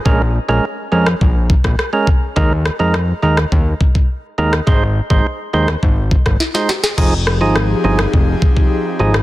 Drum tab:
CC |----------------|----------------|----------------|x---------------|
SD |-------r---rr---|--r-r--r-------r|-------r---roooo|--r-r--r-------r|
BD |o-------o-oo--o-|o-------o-oo----|o--o----o-oo----|o-------o-oo----|